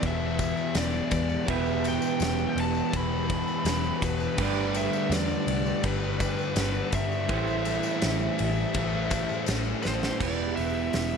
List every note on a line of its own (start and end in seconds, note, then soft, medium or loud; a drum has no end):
0.00 0.52 E1 medium
0.00 1.45 E2 loud
0.00 1.45 E2 medium
0.00 1.46 B2 loud
0.00 1.45 E3 medium
0.00 1.47 E3 loud
0.00 1.48 B3 medium
0.00 1.46 E4 medium
0.00 1.49 G4 medium
0.00 10.16 G4 medium
0.00 1.49 B4 medium
0.00 7.25 B4 medium
0.00 4.34 E5 medium
0.00 1.45 B5 medium
0.00 kick loud
0.00 ride loud
0.00 tambourine soft
0.04 1.46 B2 medium
0.04 1.47 E3 medium
0.04 0.77 E5 medium
0.39 kick medium
0.39 ride medium
0.39 tambourine medium
0.57 tambourine soft
0.75 1.00 E1 loud
0.75 1.45 D5 medium
0.75 snare loud
0.75 ride loud
0.75 tambourine medium
0.94 tambourine soft
1.11 1.37 E2 medium
1.11 kick medium
1.11 ride medium
1.11 tambourine medium
1.30 tambourine soft
1.47 1.98 E1 loud
1.47 2.90 E2 loud
1.47 2.91 B2 loud
1.47 4.36 E3 medium
1.47 2.92 E3 loud
1.47 4.36 B3 medium
1.47 4.36 E4 medium
1.47 4.40 G4 loud
1.47 4.37 B4 loud
1.47 1.86 E5 loud
1.47 7.25 A5 medium
1.47 kick loud
1.47 ride medium
1.66 tambourine soft
1.84 2.60 G5 loud
1.84 ride medium
1.84 tambourine medium
2.02 tambourine medium
2.20 2.45 E1 medium
2.20 snare loud
2.20 ride loud
2.20 tambourine medium
2.38 tambourine soft
2.55 2.80 E1 medium
2.55 ride medium
2.60 2.96 A5 loud
2.75 tambourine soft
2.92 3.42 E1 medium
2.92 4.36 E2 medium
2.92 4.37 B2 medium
2.92 4.37 E3 medium
2.92 kick medium
2.92 ride loud
2.92 tambourine soft
2.97 4.07 B5 loud
3.30 kick medium
3.30 ride medium
3.48 tambourine soft
3.65 3.90 E1 loud
3.65 snare loud
3.65 ride loud
3.65 tambourine medium
3.84 tambourine soft
4.02 4.27 E1 medium
4.02 4.40 B4 medium
4.02 kick medium
4.02 ride medium
4.02 tambourine medium
4.20 tambourine soft
4.37 4.88 G1 medium
4.37 5.81 G2 medium
4.37 5.82 D3 loud
4.37 7.28 G3 medium
4.37 7.27 A3 medium
4.37 7.27 D4 medium
4.37 7.29 G4 medium
4.37 7.28 B4 loud
4.37 7.26 D5 medium
4.37 kick loud
4.37 crash loud
4.42 5.87 G3 loud
4.42 4.77 D5 medium
4.57 tambourine soft
4.75 5.13 E5 loud
4.75 ride medium
4.75 tambourine medium
4.93 tambourine medium
5.10 5.35 E2 loud
5.10 5.87 D5 loud
5.10 snare loud
5.10 ride loud
5.10 tambourine loud
5.29 tambourine soft
5.47 5.72 C2 medium
5.47 ride medium
5.66 tambourine soft
5.84 6.33 G1 medium
5.84 7.27 G2 medium
5.84 7.28 D3 medium
5.84 7.30 G3 medium
5.84 6.89 B4 medium
5.84 kick loud
5.84 ride loud
5.84 tambourine soft
6.20 kick medium
6.20 ride medium
6.20 tambourine medium
6.38 tambourine soft
6.56 6.81 G1 loud
6.56 snare loud
6.56 ride loud
6.56 tambourine medium
6.75 tambourine soft
6.92 7.31 G2 medium
6.92 9.44 E5 medium
6.92 kick medium
6.92 ride medium
6.92 tambourine medium
7.12 tambourine soft
7.28 7.78 A1 loud
7.28 10.17 A2 medium
7.28 8.72 A2 medium
7.28 10.18 E3 medium
7.28 8.73 E3 loud
7.28 10.18 G3 medium
7.28 8.74 A3 loud
7.28 10.18 C4 medium
7.28 10.18 E4 loud
7.28 10.18 C5 loud
7.28 10.18 C5 medium
7.28 10.17 E5 medium
7.28 10.18 A5 medium
7.28 kick loud
7.28 ride medium
7.47 tambourine soft
7.65 ride medium
7.65 tambourine medium
7.83 tambourine medium
8.02 8.27 A1 medium
8.02 snare loud
8.02 ride medium
8.02 tambourine medium
8.20 tambourine soft
8.38 8.64 A1 medium
8.38 ride medium
8.38 tambourine soft
8.56 tambourine soft
8.74 9.24 A1 medium
8.74 10.17 A2 medium
8.74 10.18 E3 medium
8.74 10.19 A3 medium
8.74 kick medium
8.74 ride loud
9.10 kick medium
9.10 ride medium
9.10 tambourine medium
9.29 tambourine soft
9.46 9.73 A1 loud
9.46 snare loud
9.46 ride loud
9.46 tambourine medium
9.65 tambourine soft
9.83 10.10 A1 medium
9.83 10.21 C5 medium
9.83 snare medium
9.83 tambourine medium
10.01 snare medium
10.01 tambourine soft
10.19 10.52 E1 medium
10.19 11.17 E2 medium
10.19 11.17 B2 medium
10.19 11.17 E3 medium
10.19 11.17 E3 loud
10.19 11.17 B3 medium
10.19 11.17 E4 medium
10.19 11.17 G4 medium
10.19 11.17 B4 medium
10.19 10.56 D5 medium
10.19 11.17 E5 medium
10.19 11.17 B5 medium
10.19 kick loud
10.19 crash medium
10.56 10.89 E1 medium
10.56 11.17 E5 medium
10.56 open hi-hat soft
10.93 11.17 E1 medium
10.93 snare medium
10.93 open hi-hat medium